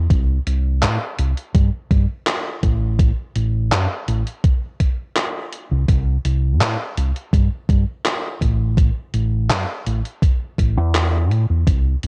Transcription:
0.10 fingered electric bass C2, kick, closed hi-hat
0.46 fingered electric bass C2, closed hi-hat
0.82 fingered electric bass A2, clap, closed hi-hat
1.18 fingered electric bass C2, closed hi-hat
1.37 closed hi-hat
1.55 fingered electric bass G2, kick, closed hi-hat
1.91 fingered electric bass G2, kick, closed hi-hat
2.27 clap, closed hi-hat
2.63 fingered electric bass A1, kick, closed hi-hat
2.99 kick, closed hi-hat
3.36 fingered electric bass A1, closed hi-hat
3.72 fingered electric bass F#2, clap, closed hi-hat
4.08 fingered electric bass A1, closed hi-hat
4.27 closed hi-hat
4.44 kick, closed hi-hat
4.80 kick, closed hi-hat
5.16 clap, closed hi-hat
5.52 closed hi-hat
5.71 fingered electric bass C2
5.88 fingered electric bass C2, kick, closed hi-hat
6.25 fingered electric bass C2, closed hi-hat
6.61 fingered electric bass A2, clap, closed hi-hat
6.97 fingered electric bass C2, closed hi-hat
7.16 closed hi-hat
7.33 fingered electric bass G2, kick, closed hi-hat
7.69 fingered electric bass G2, kick, closed hi-hat
8.06 clap, closed hi-hat
8.41 fingered electric bass A1, kick, closed hi-hat
8.78 kick, closed hi-hat
9.14 fingered electric bass A1, closed hi-hat
9.50 fingered electric bass F#2, clap, closed hi-hat
9.86 fingered electric bass A1, closed hi-hat
10.05 closed hi-hat
10.22 kick, closed hi-hat
10.58 fingered electric bass A1, kick, closed hi-hat
10.77 fingered electric bass E2
10.95 clap, closed hi-hat
11.31 fingered electric bass A2, closed hi-hat
11.50 fingered electric bass E2
11.67 fingered electric bass C2, kick, closed hi-hat
12.03 fingered electric bass C2, closed hi-hat

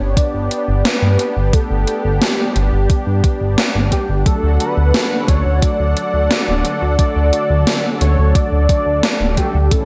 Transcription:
Already playing: analog synth pad B3 D4 G4, analog synth lead C#5
0.00 analog synth bass G1
0.17 analog synth lead D5, kick, closed hi-hat
0.34 analog synth bass G1
0.51 closed hi-hat
0.68 analog synth bass G1
0.85 analog synth lead B4, snare, closed hi-hat
1.02 analog synth bass G2
1.19 closed hi-hat
1.36 analog synth bass G1
1.53 analog synth lead A4, kick, closed hi-hat
1.70 analog synth bass G1
1.87 closed hi-hat
2.05 analog synth bass G1
2.22 analog synth lead G4, snare, closed hi-hat
2.56 analog synth bass G1, closed hi-hat
2.73 analog synth bass G1
2.90 kick, closed hi-hat
3.07 analog synth bass G2
3.24 kick, closed hi-hat
3.41 analog synth bass G1
3.58 snare, closed hi-hat
3.75 analog synth bass G1
3.92 analog synth lead G4, kick, closed hi-hat
4.09 analog synth bass G1
4.26 analog synth pad D3 A4 F#5, analog polysynth F#3 A3 D4 F#4 A4, analog synth lead A4, kick, closed hi-hat
4.43 analog synth bass D2
4.60 analog synth lead B4, closed hi-hat
4.77 analog synth bass D2
4.94 snare, closed hi-hat
5.28 analog synth bass D2, analog synth lead C#5, kick, closed hi-hat
5.45 analog synth bass D2
5.62 analog synth lead D5, kick, closed hi-hat
5.80 analog synth bass D2
5.97 closed hi-hat
6.14 analog synth bass D2
6.31 snare, closed hi-hat
6.48 analog synth bass D1
6.65 analog polysynth F#3 A3 D4 F#4 A4, closed hi-hat
6.82 analog synth bass D2
6.99 analog polysynth F#3 A3 D4 F#4 A4, analog synth lead D5, kick, closed hi-hat
7.16 analog synth bass D2
7.33 closed hi-hat
7.50 analog synth bass D2
7.67 snare, closed hi-hat
8.01 analog synth bass D2, analog synth lead C#5, closed hi-hat
8.18 analog synth bass D2
8.35 analog synth lead D5, kick, closed hi-hat
8.52 analog synth bass D2
8.69 kick, closed hi-hat
8.86 analog synth bass D2
9.03 snare, closed hi-hat
9.20 analog synth bass D1
9.37 analog polysynth F#3 A3 D4 F#4 A4, analog synth lead G4, kick, closed hi-hat
9.54 analog synth bass D2
9.71 analog polysynth A2 E3 A3 C#4 E4 A4, analog synth pad A3 C#4 E4, analog synth lead A4, kick, closed hi-hat

